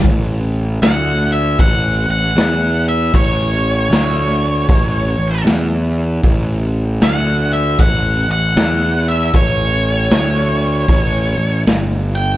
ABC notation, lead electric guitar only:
X:1
M:4/4
L:1/8
Q:"Swing" 1/4=77
K:Amix
V:1 name="Lead electric guitar"
z2 f e f f2 e | c6 z2 | z2 f e f f2 e | c6 z g |]